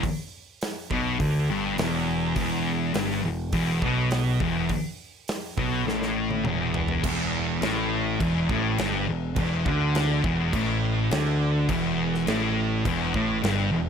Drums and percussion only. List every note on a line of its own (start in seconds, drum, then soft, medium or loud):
0.03 kick loud
0.03 open hi-hat medium
0.61 snare loud
0.61 open hi-hat medium
0.91 kick loud
1.20 kick loud
1.20 open hi-hat medium
1.78 snare loud
1.78 open hi-hat medium
2.36 kick medium
2.36 open hi-hat medium
2.94 snare loud
2.94 open hi-hat medium
3.11 snare soft
3.53 kick loud
3.53 open hi-hat medium
3.82 kick loud
4.11 snare loud
4.11 open hi-hat medium
4.40 kick loud
4.69 kick loud
4.69 open hi-hat medium
5.28 snare loud
5.28 open hi-hat medium
5.58 kick loud
5.88 snare medium
6.02 snare medium
6.31 high tom medium
6.45 mid tom medium
6.74 floor tom loud
6.88 floor tom medium
7.04 kick loud
7.04 crash loud
7.04 crash medium
7.62 snare loud
7.62 crash medium
8.20 kick loud
8.20 crash medium
8.49 kick loud
8.78 snare loud
8.78 crash medium
9.36 kick loud
9.36 crash medium
9.66 kick loud
9.95 snare loud
9.95 crash medium
10.24 kick loud
10.53 kick loud
10.53 crash medium
11.11 snare loud
11.11 crash medium
11.69 kick loud
11.69 crash medium
12.14 snare soft
12.27 snare loud
12.27 crash medium
12.85 kick loud
12.85 crash medium
13.14 kick loud
13.44 snare loud
13.44 crash medium